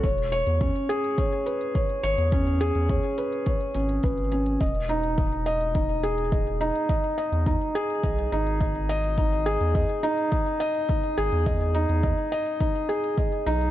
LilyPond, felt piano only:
\new Staff \with { instrumentName = "Felt piano" } { \time 4/4 \key cis \minor \tempo 4 = 105 cis''8 cis''8 cis'8 gis'8 cis''8 b'8 cis''8 cis''8 | cis'8 gis'8 cis''8 b'8 cis''8 cis'8 b'8 cis'8 | dis''8 dis'8 dis''8 dis''8 dis'8 gis'8 dis''8 dis'8 | dis''8 dis''8 dis'8 gis'8 dis''8 dis'8 dis''8 dis''8 |
dis'8 gis'8 dis''8 dis'8 dis''8 dis''8 dis'8 gis'8 | dis''8 dis'8 dis''8 dis''8 dis'8 gis'8 dis''8 dis'8 | }